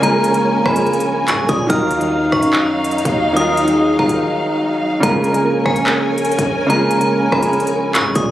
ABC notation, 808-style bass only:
X:1
M:4/4
L:1/16
Q:1/4=144
K:Bbm
V:1 name="808-style bass" clef=bass
B,,,6 B,,,6 B,, B,,, B,,2 | E,,6 G,,6- G,, E,,3- | E,,6 E,,2 z8 | B,,,6 B,,,6- B,,, B,,,3- |
B,,,6 B,,,6 B,, B,,, B,,2 |]